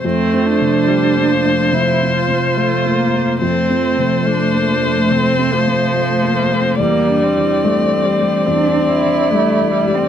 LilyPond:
<<
  \new Staff \with { instrumentName = "Violin" } { \time 4/4 \key f \major \tempo 4 = 71 c''1 | c''1 | d''1 | }
  \new Staff \with { instrumentName = "Cello" } { \time 4/4 \key f \major c'8 d'4. e'8 f'4. | a2.~ a8 bes16 c'16 | bes8 c'4. d'8 e'4~ e'16 c'16 | }
  \new Staff \with { instrumentName = "Felt piano" } { \time 4/4 \key f \major \tuplet 3/2 { f,8 c'8 c8 a8 bes8 a8 c8 c'8 c8 a8 bes8 a8 } | \tuplet 3/2 { f,8 c'8 c8 a8 bes8 a8 c8 c'8 c8 a8 bes8 a8 } | \tuplet 3/2 { e,8 d'8 e8 g8 a8 g8 e,8 d'8 e8 g8 a8 g8 } | }
  \new Staff \with { instrumentName = "Viola" } { \time 4/4 \key f \major a4 g8 f4. a8 bes8 | c'4 d'4 c'8 f4. | g4 a8 g8 c'4 a8 g8 | }
>>